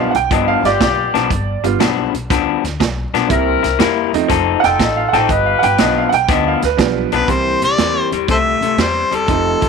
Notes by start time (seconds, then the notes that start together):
Already playing: G2 F3 G3 B3 D4 F4
0.00 F5
0.11 B1 F#5, closed hi-hat
0.15 G5, muted clean electric guitar stroke
0.31 G1 G2 F3 B3 D4 D#5, kick, closed hi-hat
0.48 F5
0.63 G1 B3 F4 G4 D5, muted clean electric guitar stroke, snare, closed hi-hat
0.80 B1, muted clean electric guitar stroke, kick, snare, closed hi-hat
1.14 B1 G2 F3 B3 D4, snare, closed hi-hat
1.30 G1, muted clean electric guitar stroke, kick, closed hi-hat
1.64 G1 G3 B3 D4 F4, muted clean electric guitar stroke, closed hi-hat
1.79 B1 G2 F3 B3 D4, snare, closed hi-hat
2.14 B1, muted clean electric guitar stroke, closed hi-hat
2.30 D2 G2 F3 B3 D4, kick, snare, closed hi-hat
2.64 D2, muted clean electric guitar stroke, snare, closed hi-hat
2.80 B1, muted clean electric guitar stroke, kick, snare, closed hi-hat
3.13 B1 G2 F3 B3 D4, snare, closed hi-hat
3.28 C2 G3 A#3 C4 E4 A#4, muted clean electric guitar stroke, kick, closed hi-hat
3.63 C2, muted clean electric guitar stroke, snare, closed hi-hat
3.79 E2 C3 G3 A#3 E4, snare, closed hi-hat
4.13 E2 F3 A3 C4 D#4, muted clean electric guitar stroke, closed hi-hat
4.28 F1 F3 C4 D#4 A4, kick, snare, closed hi-hat
4.60 F1 D#4 F4 F#5, muted clean electric guitar stroke, closed hi-hat
4.64 A4 G5, snare
4.79 A1 D#5, muted clean electric guitar stroke, kick, snare, closed hi-hat
4.97 F5
5.09 F#5
5.13 A1 F3 C4 D#4 A4 G5, snare, closed hi-hat
5.29 G1 F4 G4 B4 D#5, muted clean electric guitar stroke, kick, closed hi-hat
5.46 F5
5.59 G1 F#5, closed hi-hat
5.63 G5, muted clean electric guitar stroke
5.78 B1 G2 F3 B3 D4 D#5, snare, closed hi-hat
5.98 F5
6.09 B1 F#5, muted clean electric guitar stroke, closed hi-hat
6.14 G5
6.28 D2 G2 F3 B3 D4 D#5, kick, snare, closed hi-hat
6.48 F5
6.62 D2 B4, muted clean electric guitar stroke, snare, closed hi-hat
6.77 B1 F3 G3 B3 D4, muted clean electric guitar stroke, kick, snare, closed hi-hat
7.12 B1 G2 F3 B3 D4 B4, closed hi-hat
7.28 C2 C3 E3 G3 A#3 C4 C5, kick, closed hi-hat
7.62 C2 C3 G3 D5, closed hi-hat
7.78 E2 C3 E3 G3 A#3 C4, snare, closed hi-hat
8.12 E2 C3 G3, closed hi-hat
8.28 C2 C3 A3 A4 C5 E5, kick, closed hi-hat
8.61 C2 C3 A3, closed hi-hat
8.77 E2 C3 G3 C5, snare, closed hi-hat
9.11 E2 C3 G3 A4, closed hi-hat
9.27 F1 F2 C3 F3 A3 C4 D#4, kick, closed hi-hat
9.60 F1 F2 C3, kick, closed hi-hat